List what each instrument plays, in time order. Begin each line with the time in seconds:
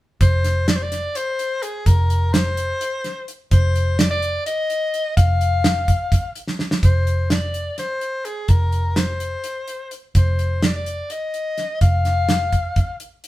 0.21 picked electric bass F1, soprano saxophone C5, kick, closed hi-hat
0.44 snare, closed hi-hat
0.68 soprano saxophone D5, snare, closed hi-hat
0.75 soprano saxophone C5
0.82 soprano saxophone D5
0.92 snare, closed hi-hat
1.15 soprano saxophone C5, closed hi-hat
1.39 closed hi-hat
1.63 soprano saxophone G#4, closed hi-hat
1.86 picked electric bass F1, soprano saxophone A#4, kick, closed hi-hat
2.10 closed hi-hat
2.33 soprano saxophone C5, snare, closed hi-hat
2.57 closed hi-hat
2.81 closed hi-hat
3.04 snare, closed hi-hat
3.28 closed hi-hat
3.51 picked electric bass F1, soprano saxophone C5, kick, closed hi-hat
3.75 closed hi-hat
3.99 soprano saxophone D5, snare, closed hi-hat
4.10 soprano saxophone D5
4.22 closed hi-hat
4.46 soprano saxophone D#5, closed hi-hat
4.70 closed hi-hat
4.94 closed hi-hat
5.17 picked electric bass F1, soprano saxophone F5, kick, closed hi-hat
5.41 closed hi-hat
5.64 snare, closed hi-hat
5.88 kick, closed hi-hat
6.12 kick, closed hi-hat
6.35 closed hi-hat
6.48 snare
6.59 snare
6.71 snare
6.83 picked electric bass F1, soprano saxophone C5, kick, closed hi-hat
7.07 closed hi-hat
7.30 soprano saxophone D5, snare, closed hi-hat
7.54 closed hi-hat
7.78 soprano saxophone C5, snare, closed hi-hat
8.01 closed hi-hat
8.25 soprano saxophone G#4, closed hi-hat
8.48 picked electric bass F1, soprano saxophone A#4, kick, closed hi-hat
8.72 closed hi-hat
8.96 soprano saxophone C5, snare, closed hi-hat
9.20 closed hi-hat
9.44 closed hi-hat
9.68 closed hi-hat
9.91 closed hi-hat
10.15 picked electric bass F1, soprano saxophone C5, kick, closed hi-hat
10.39 closed hi-hat
10.62 soprano saxophone D5, snare, closed hi-hat
10.76 soprano saxophone D5
10.86 closed hi-hat
11.10 soprano saxophone D#5, closed hi-hat
11.34 closed hi-hat
11.58 snare, closed hi-hat
11.81 picked electric bass F1, soprano saxophone F5, kick, closed hi-hat
12.05 snare, closed hi-hat
12.29 snare, closed hi-hat
12.52 kick, closed hi-hat
12.76 kick, closed hi-hat
13.00 closed hi-hat
13.24 closed hi-hat